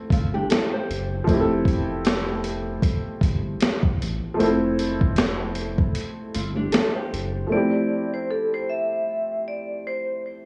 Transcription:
0.00 1.21 F3 medium
0.00 1.22 A3 medium
0.00 1.23 C4 medium
0.00 1.25 E4 medium
0.00 1.26 A4 loud
0.10 0.44 G1 medium
0.10 0.33 C4 medium
0.10 0.32 F4 medium
0.10 kick loud
0.10 closed hi-hat medium
0.34 0.49 D4 medium
0.34 0.49 G4 medium
0.50 0.72 E4 medium
0.50 0.71 A4 medium
0.50 snare loud
0.50 closed hi-hat medium
0.73 1.86 G4 medium
0.73 1.85 C5 medium
0.90 1.22 F#1 medium
0.90 closed hi-hat medium
1.24 4.33 F3 medium
1.24 4.35 A3 medium
1.24 kick loud
1.28 2.80 F1 loud
1.28 4.36 C4 medium
1.28 4.37 E4 medium
1.28 closed hi-hat medium
1.34 1.38 G4 medium
1.40 4.41 A4 medium
1.65 kick loud
1.65 closed hi-hat medium
2.05 snare loud
2.05 closed hi-hat medium
2.44 closed hi-hat medium
2.82 kick medium
2.82 closed hi-hat medium
3.21 3.55 G1 medium
3.21 kick loud
3.21 closed hi-hat medium
3.61 snare loud
3.61 closed hi-hat medium
3.83 kick medium
4.02 4.20 A1 medium
4.02 closed hi-hat medium
4.34 7.44 F3 medium
4.34 7.46 A3 medium
4.39 5.91 F1 loud
4.39 7.47 C4 medium
4.39 7.48 E4 medium
4.39 closed hi-hat medium
4.44 7.49 A4 medium
4.79 closed hi-hat medium
5.01 kick medium
5.16 snare loud
5.16 closed hi-hat medium
5.55 closed hi-hat medium
5.78 kick medium
5.95 closed hi-hat medium
6.34 6.68 G1 medium
6.34 6.56 C4 medium
6.34 6.55 F4 medium
6.34 closed hi-hat medium
6.56 6.72 D4 medium
6.56 6.72 G4 medium
6.72 6.94 E4 medium
6.72 6.94 A4 medium
6.72 snare loud
6.72 closed hi-hat medium
6.95 7.48 G4 medium
6.95 7.48 C5 medium
7.13 7.46 F#1 loud
7.13 closed hi-hat medium
7.47 10.45 F3 medium
7.47 10.45 A3 medium
7.52 10.45 C4 medium
7.52 10.45 E4 soft
7.52 8.09 D5 medium
7.56 10.45 G4 medium
8.14 8.28 C5 medium
8.31 8.50 A4 medium
8.54 8.67 C5 medium
8.69 9.42 E5 medium
9.48 9.82 D5 medium
9.87 10.21 C5 medium

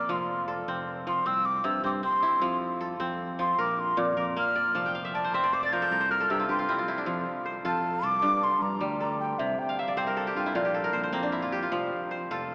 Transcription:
0.00 0.15 A#2 medium
0.00 0.54 A#3 medium
0.00 0.15 C4 medium
0.00 0.54 A#4 medium
0.00 1.01 D5 medium
0.00 0.13 D6 medium
0.09 0.61 F1 medium
0.09 1.06 F3 medium
0.09 0.50 C6 medium
0.48 1.80 A4 medium
0.68 1.20 F1 medium
0.68 1.25 C4 medium
1.07 1.31 F3 medium
1.07 1.28 C6 medium
1.26 1.60 C2 medium
1.26 1.83 C4 medium
1.26 1.47 E6 loud
1.45 1.67 D6 medium
1.64 1.82 G2 medium
1.64 2.47 C3 medium
1.64 1.84 E6 medium
1.84 2.01 G2 medium
1.84 2.03 C4 medium
1.84 1.92 D6 loud
2.03 2.99 C4 medium
2.03 2.58 C6 medium
2.22 3.45 E4 medium
2.42 2.94 F2 medium
2.42 3.38 F3 medium
2.81 3.64 A4 medium
3.00 3.52 F2 medium
3.00 4.80 C4 medium
3.39 3.63 F3 medium
3.39 3.62 C6 medium
3.58 3.93 A#1 medium
3.58 4.17 A#4 medium
3.58 3.81 D6 medium
3.79 4.00 C6 medium
3.97 4.14 F2 medium
3.97 4.80 A#2 medium
3.97 4.17 D6 medium
4.17 4.34 F2 medium
4.17 4.81 A#4 medium
4.17 4.25 D6 loud
4.36 4.81 A#3 medium
4.36 4.91 F6 loud
4.56 5.14 D5 medium
4.75 5.27 F1 medium
4.75 5.71 F3 medium
4.75 5.62 A5 medium
4.86 5.79 G5 medium
4.95 5.40 F5 medium
5.05 5.34 E5 medium
5.14 5.43 D5 medium
5.14 5.35 A5 medium
5.24 5.52 C5 medium
5.32 5.84 F1 medium
5.32 6.68 C4 medium
5.32 5.79 E5 medium
5.32 5.55 C6 medium
5.44 5.62 D5 medium
5.53 6.00 C5 medium
5.53 5.64 D6 medium
5.63 6.74 D5 medium
5.63 5.74 A6 medium
5.73 5.96 F3 medium
5.73 5.91 A#4 medium
5.73 6.12 G6 loud
5.82 6.17 A4 medium
5.91 6.25 C2 medium
5.91 6.11 A#4 medium
6.00 7.19 C5 medium
6.11 7.38 A#4 medium
6.11 6.32 F6 loud
6.20 7.52 A4 medium
6.30 6.47 G2 medium
6.30 7.12 C3 medium
6.30 6.48 G4 medium
6.30 6.49 E6 medium
6.39 6.58 F4 medium
6.49 6.66 G2 medium
6.49 7.90 G4 medium
6.49 6.85 C6 medium
6.59 6.78 F4 medium
6.69 8.49 C4 medium
6.69 6.88 E4 medium
6.78 7.64 F4 medium
6.88 7.12 E4 medium
6.98 8.66 D4 medium
7.06 7.24 F2 medium
7.06 8.28 F3 medium
7.46 8.64 C5 medium
7.65 8.00 F2 medium
7.65 9.16 F4 medium
7.65 8.03 A4 medium
7.65 8.06 A5 medium
8.03 8.21 C2 medium
8.03 9.00 A4 medium
8.03 8.45 D6 loud
8.22 9.45 G2 medium
8.22 8.58 G2 medium
8.43 8.64 C6 loud
8.61 8.79 G2 medium
8.61 9.00 A#5 medium
8.81 9.33 D2 medium
8.81 9.45 G3 medium
9.00 10.13 A4 medium
9.00 9.19 A#5 medium
9.20 9.40 G5 medium
9.39 9.57 C2 medium
9.39 10.61 C3 medium
9.39 9.61 E5 medium
9.59 9.81 G5 medium
9.69 10.52 F5 medium
9.79 10.42 E5 medium
9.79 9.99 F5 medium
9.88 10.99 D5 medium
9.97 10.32 C2 medium
9.97 11.13 C4 medium
9.97 10.93 C5 medium
9.97 10.56 G5 medium
10.07 10.80 A#4 medium
10.17 10.61 A4 medium
10.27 10.64 G4 medium
10.35 10.53 G2 medium
10.35 10.55 F4 medium
10.46 11.32 E4 medium
10.55 10.90 A#1 medium
10.55 11.77 A#2 medium
10.55 11.38 F4 medium
10.65 11.52 G4 medium
10.74 11.19 A4 medium
10.84 12.11 A#4 medium
10.93 11.12 A#1 medium
10.93 11.03 C5 medium
11.03 12.11 C5 medium
11.13 11.66 F2 loud
11.13 12.37 A#3 medium
11.13 12.55 C4 medium
11.23 12.55 D4 medium
11.32 11.69 E4 medium
11.42 11.62 F4 medium
11.52 12.55 G4 medium
11.63 12.30 F4 medium
11.72 11.89 F1 medium
11.72 12.55 F3 medium
12.11 12.55 C5 medium
12.30 12.55 F1 medium
12.30 12.55 F4 medium
12.30 12.55 A4 medium

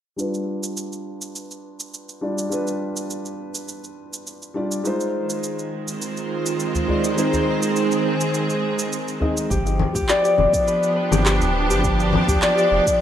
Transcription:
0.16 2.18 G3 medium
0.16 2.19 D4 medium
0.16 2.19 F4 medium
0.16 2.20 B4 medium
0.16 shaker soft
0.34 shaker soft
0.63 shaker medium
0.77 shaker soft
0.93 shaker soft
1.22 shaker medium
1.35 shaker soft
1.51 shaker soft
1.80 shaker medium
1.94 shaker soft
2.09 shaker soft
2.21 2.48 G3 medium
2.21 2.48 D4 medium
2.21 2.48 F4 medium
2.21 2.49 D5 medium
2.38 shaker medium
2.49 4.51 G3 medium
2.49 4.52 D4 medium
2.49 4.52 F4 medium
2.49 4.53 B4 medium
2.49 shaker soft
2.67 shaker soft
2.97 shaker medium
3.10 shaker soft
3.25 shaker soft
3.55 shaker medium
3.69 shaker soft
3.84 shaker soft
4.13 shaker medium
4.27 shaker soft
4.42 shaker soft
4.54 4.81 G3 medium
4.54 4.81 D4 medium
4.54 4.82 F4 medium
4.54 4.82 D5 medium
4.71 shaker medium
4.83 6.84 G#3 medium
4.83 6.85 D#4 medium
4.83 6.86 F4 medium
4.83 6.86 C5 medium
4.83 shaker soft
5.00 shaker soft
5.15 9.51 D#3 medium
5.23 9.51 G#3 medium
5.30 shaker medium
5.43 shaker medium
5.59 shaker soft
5.88 9.51 C4 medium
5.88 8.12 F4 medium
5.88 9.51 C5 medium
5.88 shaker medium
6.02 shaker medium
6.17 shaker soft
6.46 shaker medium
6.60 shaker medium
6.75 udu medium
6.75 shaker soft
6.88 7.14 G#3 medium
6.88 7.14 D#4 medium
6.88 7.14 F4 medium
6.88 7.15 D5 medium
6.88 udu medium
7.04 shaker medium
7.15 9.17 G#3 medium
7.15 9.18 C4 medium
7.15 9.18 D#4 medium
7.15 9.19 C5 medium
7.15 shaker medium
7.33 udu medium
7.33 shaker soft
7.62 shaker medium
7.76 9.50 G#4 medium
7.76 shaker medium
7.92 shaker soft
8.21 shaker medium
8.34 shaker medium
8.50 shaker soft
8.79 shaker medium
8.93 shaker medium
9.08 shaker soft
9.20 9.47 G#3 medium
9.20 9.47 C4 medium
9.20 9.47 D#4 medium
9.20 9.48 D#5 medium
9.20 udu medium
9.37 shaker medium
9.50 9.85 G1 medium
9.50 13.01 F3 medium
9.50 9.95 G4 medium
9.50 kick loud
9.50 shaker soft
9.67 shaker soft
9.79 udu medium
9.79 low conga medium
9.94 10.03 D2 loud
9.94 10.24 G4 medium
9.94 kick loud
9.94 udu medium
9.94 shaker medium
10.08 13.01 B3 medium
10.08 11.93 D5 loud
10.08 clap loud
10.08 shaker medium
10.24 11.11 G4 medium
10.24 shaker soft
10.38 10.47 F1 medium
10.38 low conga medium
10.53 13.01 G4 medium
10.53 kick loud
10.53 shaker medium
10.59 13.01 D4 medium
10.67 10.96 B4 medium
10.67 shaker soft
10.83 shaker soft
10.96 13.00 B4 medium
11.11 11.42 G1 medium
11.11 11.25 G4 medium
11.11 low conga medium
11.11 shaker medium
11.26 11.70 G4 medium
11.26 clap loud
11.26 shaker medium
11.40 11.71 D1 medium
11.40 udu medium
11.40 shaker soft
11.49 13.01 D5 medium
11.70 12.18 G1 medium
11.70 11.83 G4 loud
11.70 shaker medium
11.83 12.28 G4 medium
11.83 kick loud
11.83 shaker medium
12.00 shaker soft
12.13 udu medium
12.13 low conga medium
12.28 12.37 D2 loud
12.28 12.57 G4 medium
12.28 kick loud
12.28 udu medium
12.28 shaker medium
12.42 13.01 D5 loud
12.42 clap loud
12.42 shaker medium
12.57 13.01 G4 medium
12.57 shaker soft
12.71 12.81 F1 medium
12.86 kick loud
12.86 shaker medium

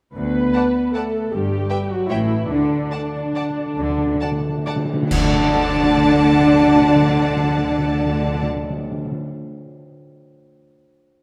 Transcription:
0.15 0.48 D2 soft
0.15 0.91 B3 medium
0.15 0.91 B4 medium
0.54 0.63 D5 soft
0.54 0.63 F#5 soft
0.54 0.62 A5 soft
0.94 1.32 A3 soft
0.94 1.32 A4 medium
0.94 1.02 D5 soft
0.94 1.02 F#5 soft
0.94 1.02 A5 soft
1.31 1.63 G1 medium
1.31 1.63 G2 medium
1.31 1.90 G3 medium
1.31 1.90 G4 medium
1.69 1.77 B4 soft
1.69 1.78 E5 soft
1.69 1.78 G5 soft
1.90 2.10 F#3 medium
1.90 2.10 F#4 medium
2.10 2.44 A1 medium
2.10 2.43 A2 medium
2.10 2.50 E3 medium
2.10 2.50 E4 medium
2.10 2.18 C#5 soft
2.10 2.18 E5 soft
2.10 2.18 G5 soft
2.50 2.84 D2 medium
2.50 2.85 D3 medium
2.50 4.90 D3 medium
2.50 4.90 D4 medium
2.58 2.64 D3 soft
2.74 2.81 D3 soft
2.91 3.00 D5 soft
2.91 3.01 F#5 soft
2.91 2.99 A5 soft
3.07 3.15 D3 soft
3.16 3.23 D3 soft
3.24 3.32 D3 soft
3.33 3.41 D3 soft
3.33 3.45 D5 soft
3.33 3.44 F#5 soft
3.33 3.43 A5 soft
3.42 3.49 D3 soft
3.50 3.57 D3 soft
3.66 3.72 D3 soft
3.73 4.13 D2 medium
3.73 3.80 D3 soft
3.78 4.13 D3 medium
3.78 3.88 D3 medium
3.89 3.96 D3 medium
3.98 4.04 D3 medium
4.05 4.13 D3 medium
4.14 4.22 D3 medium
4.21 4.30 D3 medium
4.21 4.29 D5 soft
4.21 4.29 F#5 soft
4.21 4.29 A5 soft
4.31 4.39 D3 medium
4.40 4.48 D3 medium
4.49 4.57 D3 medium
4.58 4.66 D3 medium
4.66 4.75 D3 medium
4.66 4.74 D5 soft
4.66 4.74 F#5 soft
4.66 4.74 A5 soft
4.76 4.84 D3 medium
4.85 4.92 D3 medium
4.93 5.01 D3 medium
5.02 5.10 D3 medium
5.11 8.44 D2 medium
5.11 8.44 D3 medium
5.11 5.18 D3 medium
5.11 8.44 D4 medium
5.11 8.45 D4 medium
5.11 8.45 D5 medium
5.11 8.45 F#5 medium
5.11 8.45 A5 medium
5.11 concert bass drum medium
5.11 crash medium
5.20 5.26 D3 medium
5.26 5.33 D3 medium
5.33 5.40 D3 medium
5.40 5.47 D3 medium
5.47 5.54 D3 medium
5.55 5.62 D3 medium
5.62 5.69 D3 medium
5.69 5.76 D3 medium
5.76 5.83 D3 medium
5.83 5.90 D3 medium
5.90 5.97 D3 medium
5.97 6.04 D3 medium
6.04 6.11 D3 medium
6.12 6.19 D3 medium
6.19 6.26 D3 medium
6.26 6.33 D3 medium
6.33 6.40 D3 medium
6.40 6.47 D3 medium
6.47 6.54 D3 medium
6.54 6.61 D3 medium
6.61 6.67 D3 medium
6.67 6.74 D3 medium
6.74 6.81 D3 medium
6.81 6.88 D3 medium
6.88 6.95 D3 medium
6.96 7.02 D3 medium
7.02 7.09 D3 medium
7.09 7.15 D3 medium
7.15 7.22 D3 medium
7.22 7.29 D3 medium
7.30 7.37 D3 medium
7.37 7.43 D3 medium
7.43 7.50 D3 medium
7.50 7.57 D3 medium
7.58 7.64 D3 medium
7.64 7.71 D3 medium
7.71 7.78 D3 medium
7.78 7.85 D3 medium
7.86 7.92 D3 medium
7.92 7.99 D3 medium
7.99 8.06 D3 medium
8.06 8.13 D3 medium
8.13 8.20 D3 medium
8.21 8.28 D3 medium
8.28 8.35 D3 medium
8.35 8.42 D3 medium
8.42 8.49 D3 medium
8.49 8.56 D3 medium
8.56 8.63 D3 medium
8.63 8.70 D3 medium
8.70 8.77 D3 medium
8.77 8.84 D3 medium
8.84 8.91 D3 medium
8.91 8.98 D3 medium
8.98 9.05 D3 medium
9.05 9.12 D3 medium
9.12 9.19 D3 medium

